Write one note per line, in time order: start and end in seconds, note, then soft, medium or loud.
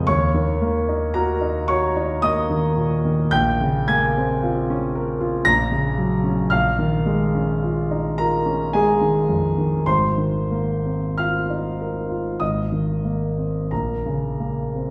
0.07 3.27 D#2 medium
0.07 1.11 C#5 medium
0.07 1.15 C#6 medium
0.34 0.77 D#3 medium
0.61 1.04 A#3 medium
0.89 1.31 D#4 soft
1.14 1.58 F#4 medium
1.14 1.65 A#4 medium
1.14 1.68 A#5 medium
1.41 1.84 D#4 medium
1.68 2.12 F#4 soft
1.68 2.19 C#5 medium
1.68 2.22 C#6 medium
1.96 2.39 D#4 medium
2.22 2.66 A#3 medium
2.22 3.27 D#5 medium
2.22 3.30 D#6 loud
2.50 2.92 D#3 soft
2.77 3.20 A#2 soft
3.05 3.32 D#3 soft
3.31 5.43 A#1 medium
3.31 3.84 G5 medium
3.31 3.87 G6 loud
3.61 4.04 C#3 medium
3.88 4.32 A#3 medium
3.88 5.43 G#5 medium
3.88 5.47 G#6 medium
4.17 4.59 C4 medium
4.43 4.85 F4 medium
4.70 5.11 C#4 medium
4.95 5.36 A#4 medium
5.21 5.46 F4 medium
5.45 6.49 A#1 medium
5.45 6.48 A#5 medium
5.45 6.51 A#6 loud
5.72 6.14 C#3 soft
5.98 6.41 F#3 soft
6.24 6.51 C#4 soft
6.50 9.82 A#1 medium
6.50 8.13 F5 medium
6.50 8.17 F6 medium
6.79 7.23 D#3 medium
7.06 7.51 G#3 medium
7.35 7.79 C#4 soft
7.63 8.07 F4 soft
7.91 8.34 D#4 soft
8.18 8.63 F4 soft
8.18 8.70 A#4 medium
8.18 8.73 A#5 medium
8.46 8.90 C#4 medium
8.73 9.18 G#3 soft
8.73 9.84 G#4 medium
8.73 9.87 G#5 medium
9.01 9.46 D#3 soft
9.29 9.75 F2 soft
9.58 9.87 D#3 soft
9.86 12.37 G#1 soft
9.86 11.15 C5 medium
9.86 11.19 C6 medium
10.18 10.72 D#3 soft
10.51 11.05 A#3 soft
10.86 11.38 C4 soft
11.18 11.68 F4 soft
11.18 12.37 F5 medium
11.18 12.40 F6 medium
11.50 11.98 D#4 soft
11.80 12.28 A#4 soft
12.09 12.40 F4 soft
12.40 13.67 G#1 soft
12.40 13.67 D#5 soft
12.40 13.71 D#6 medium
12.72 13.24 D#3 soft
13.05 13.58 A#3 soft
13.38 13.71 C4 soft
13.71 14.90 A#1 soft
13.71 14.90 A#4 soft
13.71 14.90 A#5 medium
14.06 14.61 C#3 soft
14.40 14.90 A#3 soft
14.75 14.90 C4 soft